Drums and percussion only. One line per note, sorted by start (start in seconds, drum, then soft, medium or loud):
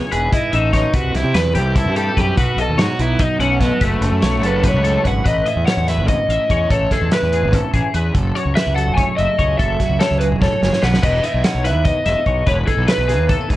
0.12 closed hi-hat medium
0.32 kick loud
0.32 closed hi-hat medium
0.53 closed hi-hat medium
0.73 kick medium
0.73 snare soft
0.73 closed hi-hat medium
0.94 kick loud
0.94 closed hi-hat medium
1.15 snare soft
1.15 closed hi-hat medium
1.35 snare medium
1.35 closed hi-hat medium
1.55 closed hi-hat medium
1.76 kick loud
1.76 closed hi-hat medium
1.96 closed hi-hat medium
2.17 kick medium
2.17 closed hi-hat medium
2.38 kick loud
2.38 closed hi-hat medium
2.58 closed hi-hat medium
2.79 snare loud
2.79 closed hi-hat medium
2.99 closed hi-hat medium
3.19 kick loud
3.19 closed hi-hat medium
3.40 closed hi-hat medium
3.61 kick medium
3.61 snare soft
3.61 closed hi-hat medium
3.81 kick loud
3.81 closed hi-hat medium
4.02 closed hi-hat medium
4.22 snare loud
4.22 closed hi-hat medium
4.43 closed hi-hat medium
4.64 kick loud
4.64 snare soft
4.64 closed hi-hat medium
4.84 closed hi-hat medium
5.05 kick medium
5.05 closed hi-hat medium
5.25 kick medium
5.25 closed hi-hat medium
5.46 closed hi-hat soft
5.67 snare loud
5.67 closed hi-hat medium
5.88 snare soft
5.88 closed hi-hat medium
6.08 kick loud
6.08 closed hi-hat medium
6.30 closed hi-hat medium
6.50 kick medium
6.50 closed hi-hat soft
6.71 kick medium
6.71 closed hi-hat medium
6.91 kick medium
6.91 snare soft
6.91 closed hi-hat medium
7.12 snare medium
7.12 closed hi-hat medium
7.33 closed hi-hat medium
7.53 kick medium
7.53 closed hi-hat medium
7.74 kick medium
7.74 closed hi-hat medium
7.94 closed hi-hat medium
8.15 kick medium
8.15 closed hi-hat medium
8.36 closed hi-hat soft
8.57 snare loud
8.57 closed hi-hat medium
8.78 closed hi-hat medium
8.98 kick loud
8.98 closed hi-hat medium
9.18 closed hi-hat soft
9.39 kick medium
9.39 closed hi-hat medium
9.59 kick medium
9.59 closed hi-hat medium
9.80 kick medium
9.80 snare soft
9.80 closed hi-hat medium
10.00 snare medium
10.00 closed hi-hat medium
10.21 closed hi-hat soft
10.42 kick medium
10.42 snare medium
10.63 snare medium
10.73 snare medium
10.83 snare medium
10.94 snare medium
11.03 kick loud
11.03 closed hi-hat medium
11.03 crash medium
11.24 closed hi-hat medium
11.44 snare loud
11.44 closed hi-hat medium
11.65 snare soft
11.65 closed hi-hat medium
11.85 kick loud
11.85 closed hi-hat medium
12.06 snare soft
12.06 closed hi-hat medium
12.26 kick medium
12.26 closed hi-hat medium
12.47 kick medium
12.47 closed hi-hat medium
12.68 kick medium
12.68 closed hi-hat medium
12.88 snare loud
12.88 closed hi-hat medium
13.09 snare soft
13.09 closed hi-hat medium
13.30 kick loud
13.30 closed hi-hat medium
13.50 kick medium
13.50 closed hi-hat medium